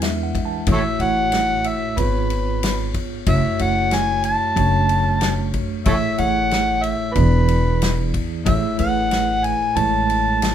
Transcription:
Already playing: E2 E3 G#3 D4 E4 G#4 B4
0.02 E5, snare, ride
0.23 F#5
0.35 kick, ride
0.45 A5
0.67 A1 A2 A3 E4 F#4 C#5, kick, ride
0.73 A4 C#5 E5
0.99 A1 A3 E4 F#4 C#5 F#5, ride
1.32 snare, ride
1.64 E5, ride
1.97 G#1 G#2 B3 F4 G#4 B4 C#5, kick, ride
2.30 ride
2.63 snare, ride
2.94 kick, ride
3.26 F#1 F#2 A3 E4 F#4 C#5 E5, kick, ride
3.59 F#1 A3 E4 F#4 C#5 F#5, ride
3.91 G#5, snare, ride
4.24 A5, ride
4.56 F#1 F#2 A3 D4 F#4 C#5, kick, ride
4.89 ride
5.21 snare, ride
5.54 kick, ride
5.85 A1 A2 A3 E4 G#4 A4 C#5 E5, kick, ride
6.18 A1 A3 E4 G#4 C#5 F#5, ride
6.51 snare, ride
6.83 E5, ride
7.14 E1 E2 E3 B3 E4 G#4 B4 D5, kick, ride
7.48 ride
7.82 snare, ride
8.14 kick, ride
8.45 A1 A2 A3 E4 G#4 C#5 E5, kick, ride
8.78 A1 A3 E4 G#4 B4 F#5, ride
9.11 snare, ride
9.44 G#5, ride
9.76 A1 G#3 A3 E4 C#5 A5, kick, ride
10.10 ride
10.42 snare, ride

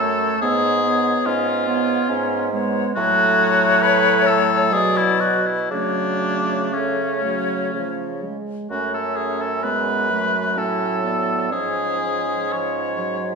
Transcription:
Already playing: F#2 A4
0.00 A3 C#5
0.41 G#2 B3 G#4 C#5
0.84 B3 C#5
1.26 G#2 C#4 F4
1.67 B3 C#5
2.09 G#2 C#4
2.52 G#3 B3 C#5
2.96 A2 F#3 A3 F#4 C#5
3.82 B4
4.26 A4
4.72 B2 F#3 G#4 D5
4.97 E4
5.20 F#4
5.46 E4
5.71 C#3 F#3 A3 D4 C#5
6.72 A3 C#4 C#5
7.24 F#3
7.73 C#3 F3 C#5
8.24 G#3
8.70 F#2 A3 C#4 F#4 C#5
8.94 A4
9.16 G#4
9.41 A4
9.63 G#3 B3 B4
10.10 F#3 A3
10.56 A2 C#4 A4 C#5
11.03 B3 D5
11.51 G#2 F3 C#4 G#4 C#5
12.02 C#5
12.52 F3 C#5
12.97 F#3

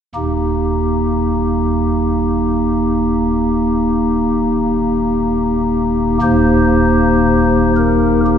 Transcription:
0.15 D#1 D#2 A#3 D#4 G4
6.22 D#1 D#2 A#3 D#4 G4 C5
7.76 A#4
8.26 G4

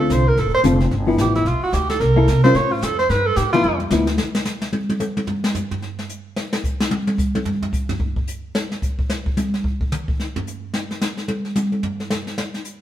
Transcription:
Already playing: D3 C4 F4 A4
0.00 A4
0.10 C2 C5, kick, snare, hi-hat pedal
0.28 A#4
0.37 A1 A4, brush sweep, kick, snare
0.45 F1
0.55 D1 C5
0.64 F1 D3 C4 F4 A4, kick, snare, hi-hat pedal
0.80 snare
0.91 G1, brush sweep, kick, snare
1.07 F3 B3 E4
1.18 A1 G4, kick, snare, hi-hat pedal
1.35 E4, snare
1.45 B1 F4, brush sweep, kick, snare
1.61 F#4, muted upright bass stroke
1.72 D2 G4, kick, snare, hi-hat pedal
1.90 A4, snare
2.00 C2 A#4, brush sweep, kick, snare
2.16 A#3 E4 A4
2.28 C3, snare, hi-hat pedal
2.44 G3 C#4 F4 C5, snare
2.54 A2 C#5, brush sweep, kick, snare
2.72 F4
2.82 F2 A4, kick, snare, hi-hat pedal
2.99 C5, snare
3.09 G2 B4, brush sweep, kick, snare
3.26 A4
3.36 A2 G4, snare, hi-hat pedal
3.53 F3 B3 E4 F4, snare
3.64 F2, high tom
3.80 high tom
3.91 D2 F3 B3 E4, snare, hi-hat pedal
4.07 snare
4.18 snare
4.35 snare
4.45 snare, hi-hat pedal
4.62 snare
4.73 high tom
4.89 high tom
5.00 hi-hat pedal, high tom
5.17 high tom
5.27 floor tom
5.44 snare
5.55 floor tom, hi-hat pedal
5.71 floor tom
5.82 snare
5.99 snare
6.09 hi-hat pedal
6.36 snare
6.53 snare
6.64 kick, hi-hat pedal
6.80 snare
6.91 high tom
7.07 high tom
7.18 kick, hi-hat pedal
7.35 high tom
7.45 floor tom
7.62 floor tom
7.73 kick, hi-hat pedal
7.89 floor tom
8.00 kick
8.16 kick
8.27 hi-hat pedal
8.55 snare
8.72 snare
8.82 kick, hi-hat pedal
8.99 kick
9.10 snare
9.26 kick
9.37 hi-hat pedal, high tom
9.54 snare
9.64 kick
9.81 kick
9.92 hi-hat pedal, mid tom
10.08 kick
10.20 snare
10.36 floor tom
10.47 hi-hat pedal
10.74 snare
10.91 snare
11.01 snare, hi-hat pedal
11.17 snare
11.28 high tom
11.45 snare
11.56 hi-hat pedal, high tom
11.72 high tom
11.83 floor tom
12.00 snare
12.10 snare, hi-hat pedal
12.27 snare
12.38 snare
12.54 snare
12.64 hi-hat pedal

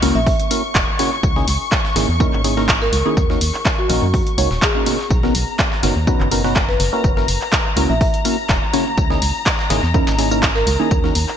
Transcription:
Already playing: C#6
0.02 C#2 A#3 C#4 E4 F#4 A#4, open hi-hat, tambourine
0.15 A#1 E5
0.27 E5, kick, open hi-hat
0.40 closed hi-hat
0.51 A#3 C#4 E4 F#4 A#4, open hi-hat, tambourine
0.75 E1, kick, snare, clap, tambourine
0.99 C#3 A#3 C#4 E4 F#4 C#5, snare, open hi-hat, tambourine
1.23 C#2, kick, tambourine
1.36 C#3 A#3 C#4 D#4 E4 G#4, snare
1.48 C#2, open hi-hat, tambourine
1.72 kick, snare, clap, tambourine
1.85 snare
1.96 G#1 C#3 A#3 C#4 D#4 E4 G#4, snare, open hi-hat, tambourine
2.09 E2
2.20 C#3 A#3 C#4 D#4 E4 A#4, kick, tambourine
2.33 G#1, clap
2.44 C#3 A#3 C#4 D#4 E4 G#4, open hi-hat, tambourine
2.57 C#3 A#3 C#4 D#4 E4 A#4, snare
2.69 kick, snare, clap, tambourine
2.82 A#4, snare
2.93 C#2, open hi-hat, tambourine
3.06 D#3 A#3 C#4 D#4 E4 G#4
3.17 D#2, kick, tambourine
3.30 D#3 A#3 C#4 D#4 F#4 A#4, snare
3.41 D#2, open hi-hat, tambourine
3.54 clap
3.65 kick, snare, clap, tambourine
3.79 F#4
3.90 A#1 D#3 A#3 C#4 D#4 F#4 A#4, open hi-hat, tambourine
4.02 F#2
4.14 kick, open hi-hat
4.27 closed hi-hat
4.38 C#2 D#3 A#3 C#4 D#4 F#4 C#5, open hi-hat, tambourine
4.51 D#1, snare
4.62 G#4, kick, snare, clap, tambourine
4.75 D#3 A#3 C#4 D#4 F#4 A#4
4.86 B2 A#3 C#4 D#4 F#4 A#4, open hi-hat, tambourine
4.99 snare
5.11 B1 A#5, kick, tambourine
5.23 B2 B3 C#4 D#4 F#4 A#4, snare
5.35 B1, open hi-hat, tambourine
5.59 kick, snare, clap, tambourine
5.72 snare
5.83 F#1 B2 B3 C#4 D#4 F#4 A#4, snare, open hi-hat, tambourine
5.96 D#2
6.07 B2 B3 C#4 D#4 F#4 B4, kick, tambourine
6.20 F#1, clap
6.31 B2 B3 C#4 D#4 F#4 A#4, open hi-hat, tambourine
6.44 B2 B3 C#4 D#4 F#4 B4, snare
6.56 kick, snare, clap, tambourine
6.69 B4, snare
6.80 F#1, open hi-hat, tambourine
6.93 A#3 C#4 E4 F#4 A#4
7.04 F#1, kick, tambourine
7.17 A#3 C#4 E4 F#4 A#4, snare
7.28 F#1, open hi-hat, tambourine
7.41 clap
7.52 kick, snare, clap, tambourine
7.77 C#2 A#3 C#4 E4 F#4 A#4, open hi-hat, tambourine
7.90 A#1 E5
8.01 E5, kick, open hi-hat
8.14 closed hi-hat
8.25 A#3 C#4 E4 F#4 A#4, open hi-hat, tambourine
8.49 E1, kick, snare, clap, tambourine
8.73 C#3 A#3 C#4 E4 F#4 C#5, snare, open hi-hat, tambourine
8.98 C#2, kick, tambourine
9.10 C#3 A#3 C#4 D#4 E4 G#4, snare
9.22 C#2, open hi-hat, tambourine
9.46 kick, snare, clap, tambourine
9.59 snare
9.70 G#1 C#3 A#3 C#4 D#4 E4 G#4, snare, open hi-hat, tambourine
9.83 E2, snare
9.94 C#3 A#3 C#4 D#4 E4 A#4, kick, tambourine
10.07 G#1, snare, clap, tambourine
10.18 C#3 A#3 C#4 D#4 E4 G#4, snare, open hi-hat
10.31 C#3 A#3 C#4 D#4 E4 A#4, tambourine
10.43 kick, snare, clap, tambourine
10.55 A#4, snare
10.67 C#2, open hi-hat, tambourine
10.80 D#3 A#3 C#4 D#4 E4 G#4
10.91 D#2, kick, tambourine
11.04 D#3 A#3 C#4 D#4 F#4 A#4, snare
11.15 D#2, open hi-hat, tambourine
11.28 clap

